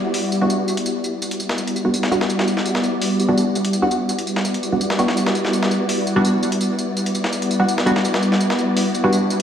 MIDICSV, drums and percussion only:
0, 0, Header, 1, 2, 480
1, 0, Start_track
1, 0, Key_signature, 1, "minor"
1, 0, Tempo, 359281
1, 1627, Time_signature, 4, 2, 24, 8
1, 12585, End_track
2, 0, Start_track
2, 0, Title_t, "Drums"
2, 185, Note_on_c, 9, 46, 75
2, 319, Note_off_c, 9, 46, 0
2, 427, Note_on_c, 9, 54, 65
2, 560, Note_off_c, 9, 54, 0
2, 666, Note_on_c, 9, 54, 80
2, 800, Note_off_c, 9, 54, 0
2, 906, Note_on_c, 9, 54, 65
2, 1033, Note_on_c, 9, 42, 41
2, 1039, Note_off_c, 9, 54, 0
2, 1147, Note_on_c, 9, 54, 81
2, 1166, Note_off_c, 9, 42, 0
2, 1280, Note_off_c, 9, 54, 0
2, 1389, Note_on_c, 9, 54, 66
2, 1523, Note_off_c, 9, 54, 0
2, 1629, Note_on_c, 9, 54, 82
2, 1754, Note_on_c, 9, 42, 42
2, 1763, Note_off_c, 9, 54, 0
2, 1868, Note_on_c, 9, 54, 65
2, 1888, Note_off_c, 9, 42, 0
2, 1996, Note_on_c, 9, 38, 46
2, 2001, Note_off_c, 9, 54, 0
2, 2110, Note_on_c, 9, 54, 84
2, 2130, Note_off_c, 9, 38, 0
2, 2237, Note_on_c, 9, 42, 42
2, 2244, Note_off_c, 9, 54, 0
2, 2350, Note_on_c, 9, 54, 63
2, 2370, Note_off_c, 9, 42, 0
2, 2483, Note_off_c, 9, 54, 0
2, 2588, Note_on_c, 9, 54, 84
2, 2714, Note_on_c, 9, 38, 50
2, 2722, Note_off_c, 9, 54, 0
2, 2830, Note_on_c, 9, 54, 65
2, 2848, Note_off_c, 9, 38, 0
2, 2955, Note_on_c, 9, 38, 46
2, 2963, Note_off_c, 9, 54, 0
2, 3068, Note_on_c, 9, 54, 82
2, 3089, Note_off_c, 9, 38, 0
2, 3194, Note_on_c, 9, 38, 50
2, 3202, Note_off_c, 9, 54, 0
2, 3309, Note_on_c, 9, 54, 65
2, 3328, Note_off_c, 9, 38, 0
2, 3434, Note_on_c, 9, 38, 35
2, 3442, Note_off_c, 9, 54, 0
2, 3548, Note_on_c, 9, 54, 82
2, 3567, Note_off_c, 9, 38, 0
2, 3674, Note_on_c, 9, 38, 44
2, 3681, Note_off_c, 9, 54, 0
2, 3788, Note_on_c, 9, 54, 65
2, 3807, Note_off_c, 9, 38, 0
2, 3921, Note_off_c, 9, 54, 0
2, 4029, Note_on_c, 9, 46, 78
2, 4162, Note_off_c, 9, 46, 0
2, 4269, Note_on_c, 9, 54, 65
2, 4403, Note_off_c, 9, 54, 0
2, 4509, Note_on_c, 9, 54, 83
2, 4643, Note_off_c, 9, 54, 0
2, 4747, Note_on_c, 9, 54, 65
2, 4870, Note_on_c, 9, 42, 42
2, 4881, Note_off_c, 9, 54, 0
2, 4985, Note_on_c, 9, 54, 83
2, 5004, Note_off_c, 9, 42, 0
2, 5119, Note_off_c, 9, 54, 0
2, 5223, Note_on_c, 9, 54, 65
2, 5357, Note_off_c, 9, 54, 0
2, 5464, Note_on_c, 9, 54, 83
2, 5591, Note_on_c, 9, 42, 42
2, 5598, Note_off_c, 9, 54, 0
2, 5704, Note_on_c, 9, 54, 64
2, 5725, Note_off_c, 9, 42, 0
2, 5830, Note_on_c, 9, 38, 46
2, 5838, Note_off_c, 9, 54, 0
2, 5943, Note_on_c, 9, 54, 83
2, 5963, Note_off_c, 9, 38, 0
2, 6070, Note_on_c, 9, 42, 43
2, 6077, Note_off_c, 9, 54, 0
2, 6185, Note_on_c, 9, 54, 67
2, 6204, Note_off_c, 9, 42, 0
2, 6319, Note_off_c, 9, 54, 0
2, 6424, Note_on_c, 9, 54, 81
2, 6548, Note_on_c, 9, 38, 51
2, 6558, Note_off_c, 9, 54, 0
2, 6666, Note_on_c, 9, 54, 65
2, 6682, Note_off_c, 9, 38, 0
2, 6791, Note_on_c, 9, 38, 47
2, 6799, Note_off_c, 9, 54, 0
2, 6905, Note_on_c, 9, 54, 86
2, 6925, Note_off_c, 9, 38, 0
2, 7034, Note_on_c, 9, 38, 48
2, 7038, Note_off_c, 9, 54, 0
2, 7148, Note_on_c, 9, 54, 65
2, 7168, Note_off_c, 9, 38, 0
2, 7276, Note_on_c, 9, 38, 35
2, 7282, Note_off_c, 9, 54, 0
2, 7390, Note_on_c, 9, 54, 86
2, 7410, Note_off_c, 9, 38, 0
2, 7516, Note_on_c, 9, 38, 47
2, 7523, Note_off_c, 9, 54, 0
2, 7630, Note_on_c, 9, 54, 66
2, 7650, Note_off_c, 9, 38, 0
2, 7764, Note_off_c, 9, 54, 0
2, 7868, Note_on_c, 9, 46, 78
2, 8002, Note_off_c, 9, 46, 0
2, 8108, Note_on_c, 9, 54, 65
2, 8242, Note_off_c, 9, 54, 0
2, 8345, Note_on_c, 9, 54, 81
2, 8479, Note_off_c, 9, 54, 0
2, 8586, Note_on_c, 9, 54, 65
2, 8711, Note_on_c, 9, 42, 43
2, 8720, Note_off_c, 9, 54, 0
2, 8827, Note_on_c, 9, 54, 85
2, 8845, Note_off_c, 9, 42, 0
2, 8961, Note_off_c, 9, 54, 0
2, 9066, Note_on_c, 9, 54, 67
2, 9199, Note_off_c, 9, 54, 0
2, 9308, Note_on_c, 9, 54, 85
2, 9435, Note_on_c, 9, 42, 42
2, 9441, Note_off_c, 9, 54, 0
2, 9548, Note_on_c, 9, 54, 65
2, 9569, Note_off_c, 9, 42, 0
2, 9674, Note_on_c, 9, 38, 47
2, 9681, Note_off_c, 9, 54, 0
2, 9787, Note_on_c, 9, 54, 83
2, 9807, Note_off_c, 9, 38, 0
2, 9914, Note_on_c, 9, 42, 43
2, 9921, Note_off_c, 9, 54, 0
2, 10029, Note_on_c, 9, 54, 66
2, 10047, Note_off_c, 9, 42, 0
2, 10163, Note_off_c, 9, 54, 0
2, 10267, Note_on_c, 9, 54, 84
2, 10394, Note_on_c, 9, 38, 51
2, 10400, Note_off_c, 9, 54, 0
2, 10509, Note_on_c, 9, 54, 66
2, 10528, Note_off_c, 9, 38, 0
2, 10635, Note_on_c, 9, 38, 47
2, 10643, Note_off_c, 9, 54, 0
2, 10750, Note_on_c, 9, 54, 85
2, 10769, Note_off_c, 9, 38, 0
2, 10876, Note_on_c, 9, 38, 50
2, 10884, Note_off_c, 9, 54, 0
2, 10990, Note_on_c, 9, 54, 67
2, 11010, Note_off_c, 9, 38, 0
2, 11116, Note_on_c, 9, 38, 36
2, 11124, Note_off_c, 9, 54, 0
2, 11230, Note_on_c, 9, 54, 83
2, 11250, Note_off_c, 9, 38, 0
2, 11358, Note_on_c, 9, 38, 46
2, 11363, Note_off_c, 9, 54, 0
2, 11470, Note_on_c, 9, 54, 66
2, 11492, Note_off_c, 9, 38, 0
2, 11604, Note_off_c, 9, 54, 0
2, 11711, Note_on_c, 9, 46, 77
2, 11845, Note_off_c, 9, 46, 0
2, 11950, Note_on_c, 9, 54, 65
2, 12083, Note_off_c, 9, 54, 0
2, 12190, Note_on_c, 9, 54, 83
2, 12324, Note_off_c, 9, 54, 0
2, 12429, Note_on_c, 9, 54, 65
2, 12563, Note_off_c, 9, 54, 0
2, 12585, End_track
0, 0, End_of_file